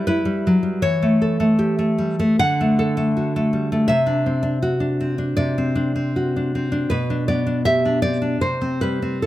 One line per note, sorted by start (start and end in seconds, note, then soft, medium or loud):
0.00 0.24 G3 medium
0.07 0.82 E4 medium
0.07 0.79 B4 medium
0.25 0.62 G3 medium
0.47 0.83 F#3 medium
0.63 0.82 G3 soft
0.82 2.35 E3 medium
0.82 2.35 C#5 medium
1.02 1.39 A3 soft
1.22 2.40 A4 medium
1.40 1.77 A3 medium
1.59 2.40 G4 medium
1.79 2.18 A3 soft
1.98 2.19 G3 soft
2.19 2.39 A3 medium
2.39 3.87 D3 medium
2.39 3.86 F#5 medium
2.61 2.96 A3 soft
2.79 3.53 A4 medium
2.97 3.35 A3 medium
3.17 3.91 F#4 medium
3.36 3.71 A3 medium
3.53 3.90 G3 soft
3.72 3.90 A3 medium
3.88 5.36 C3 medium
3.88 5.35 E5 medium
4.06 4.41 D4 soft
4.26 4.80 C4 soft
4.43 4.62 D4 soft
4.62 5.77 F#4 medium
4.80 5.17 D4 soft
5.01 5.57 C4 soft
5.18 5.74 D4 soft
5.37 6.85 C3 soft
5.37 6.11 D5 medium
5.58 5.94 C4 soft
5.75 6.35 D4 medium
5.96 6.54 C4 soft
6.16 6.91 F#4 soft
6.36 6.71 D4 medium
6.55 6.91 C4 soft
6.72 6.90 D4 soft
6.90 8.37 B2 medium
6.90 7.26 B4 medium
7.10 7.45 D4 soft
7.28 8.42 B3 soft
7.28 7.64 D5 medium
7.47 7.66 D4 soft
7.65 8.41 G4 soft
7.65 8.01 E5 medium
7.85 8.03 D4 soft
8.02 8.21 C4 soft
8.02 8.39 D5 medium
8.22 8.41 D4 soft
8.41 9.26 C3 medium
8.41 8.80 C5 medium
8.61 9.01 C4 soft
8.81 9.26 G3 soft
8.81 9.21 B4 medium
9.02 9.26 C4 soft
9.22 9.26 E4 soft
9.22 9.26 A4 medium